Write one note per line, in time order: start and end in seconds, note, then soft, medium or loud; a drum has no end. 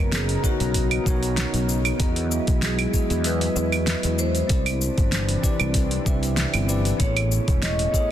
0.00 0.35 F#1 medium
0.00 1.98 C#3 medium
0.00 0.39 B3 medium
0.00 1.96 B3 medium
0.00 0.40 D#4 medium
0.00 1.98 D#4 medium
0.00 0.40 F#4 medium
0.00 0.15 A#4 medium
0.00 0.41 A#4 medium
0.00 1.98 A#4 medium
0.00 0.41 C#5 medium
0.12 0.45 G#4 medium
0.12 snare loud
0.12 open hi-hat medium
0.12 shaker soft
0.29 open hi-hat soft
0.43 1.02 B3 medium
0.43 1.03 D#4 medium
0.43 1.03 F#4 medium
0.43 1.65 F#4 medium
0.43 1.03 A#4 medium
0.43 1.03 C#5 medium
0.43 kick medium
0.43 shaker medium
0.60 0.97 B1 medium
0.60 open hi-hat soft
0.60 shaker soft
0.74 kick medium
0.74 open hi-hat medium
0.74 shaker soft
0.91 open hi-hat soft
0.91 claves medium
1.04 1.44 B1 medium
1.04 1.95 B3 medium
1.04 1.96 D#4 medium
1.04 1.97 F#4 medium
1.04 1.97 A#4 medium
1.04 kick medium
1.04 shaker medium
1.09 1.98 C#5 loud
1.23 open hi-hat soft
1.23 shaker soft
1.37 snare medium
1.37 open hi-hat medium
1.37 shaker soft
1.54 1.91 B1 medium
1.54 open hi-hat soft
1.54 shaker soft
1.69 shaker medium
1.85 open hi-hat soft
1.85 claves medium
1.85 shaker soft
1.98 2.38 E2 medium
1.98 4.48 F#3 medium
1.98 4.48 G#3 medium
1.98 2.89 B3 medium
1.98 2.90 E4 medium
1.98 4.48 E4 medium
1.98 2.90 F#4 medium
1.98 2.91 G#4 medium
1.98 kick loud
1.98 open hi-hat medium
1.98 shaker soft
2.02 2.91 D#5 medium
2.16 open hi-hat soft
2.32 shaker medium
2.47 2.85 B1 medium
2.47 kick loud
2.47 open hi-hat soft
2.47 shaker soft
2.62 3.22 G#4 medium
2.62 snare loud
2.62 open hi-hat medium
2.62 shaker soft
2.79 open hi-hat soft
2.79 claves medium
2.91 4.45 B3 medium
2.91 4.46 E4 medium
2.91 4.46 F#4 medium
2.91 4.47 G#4 medium
2.91 kick medium
2.91 shaker medium
2.96 4.48 D#5 medium
3.10 3.47 E2 medium
3.10 open hi-hat soft
3.10 shaker soft
3.24 4.15 B4 medium
3.24 open hi-hat medium
3.24 shaker soft
3.41 open hi-hat soft
3.56 3.94 E2 medium
3.56 shaker medium
3.72 open hi-hat soft
3.72 claves medium
3.72 shaker soft
3.87 snare medium
3.87 open hi-hat medium
3.87 shaker soft
4.03 4.41 E2 medium
4.03 open hi-hat soft
4.03 shaker soft
4.19 5.40 C5 loud
4.19 shaker medium
4.35 open hi-hat soft
4.35 shaker soft
4.47 4.88 C2 medium
4.47 6.97 C3 medium
4.47 6.97 E3 medium
4.47 5.39 C4 medium
4.47 6.97 D4 medium
4.47 5.40 E4 medium
4.47 5.40 G4 medium
4.47 5.41 C5 medium
4.47 kick loud
4.47 open hi-hat medium
4.47 shaker soft
4.52 5.41 D5 medium
4.66 open hi-hat soft
4.66 claves medium
4.66 shaker soft
4.81 shaker medium
4.98 5.35 G1 medium
4.98 kick loud
4.98 open hi-hat soft
4.98 shaker soft
5.12 snare medium
5.12 open hi-hat medium
5.12 shaker soft
5.29 open hi-hat soft
5.42 6.02 C4 medium
5.42 6.02 E4 medium
5.42 6.02 G4 medium
5.42 6.03 B4 medium
5.42 6.03 D5 medium
5.42 kick medium
5.42 shaker medium
5.60 5.97 C2 medium
5.60 open hi-hat soft
5.60 claves medium
5.60 shaker soft
5.74 kick medium
5.74 open hi-hat medium
5.74 shaker soft
5.91 open hi-hat soft
6.05 6.44 C2 medium
6.05 6.65 C4 medium
6.05 6.65 E4 medium
6.05 6.65 G4 medium
6.05 6.66 B4 medium
6.05 6.66 E5 medium
6.05 kick loud
6.05 shaker medium
6.23 open hi-hat soft
6.23 shaker soft
6.37 snare medium
6.37 open hi-hat medium
6.37 shaker soft
6.54 6.91 G1 medium
6.54 open hi-hat soft
6.54 claves medium
6.54 shaker soft
6.67 6.96 C4 medium
6.67 6.96 E4 medium
6.67 6.96 G4 medium
6.67 6.97 B4 medium
6.67 6.97 D5 medium
6.67 shaker medium
6.85 open hi-hat soft
6.85 shaker soft
6.97 7.38 A1 medium
6.97 8.11 A2 medium
6.97 7.89 B3 medium
6.97 8.11 C#4 medium
6.97 7.89 E4 medium
6.97 7.90 G#4 medium
6.97 7.91 A4 medium
6.97 7.65 C#5 medium
6.97 kick loud
6.97 open hi-hat medium
6.97 shaker soft
7.02 7.91 C#5 medium
7.17 open hi-hat soft
7.17 claves medium
7.32 shaker medium
7.48 7.85 E1 medium
7.48 kick loud
7.48 open hi-hat soft
7.48 shaker soft
7.62 8.11 D#5 medium
7.62 snare medium
7.62 open hi-hat medium
7.62 shaker soft
7.79 open hi-hat soft
7.91 8.11 B3 medium
7.91 8.11 E4 medium
7.91 8.11 G#4 medium
7.91 8.11 A4 medium
7.91 kick medium
7.91 shaker medium
7.96 8.11 C#5 medium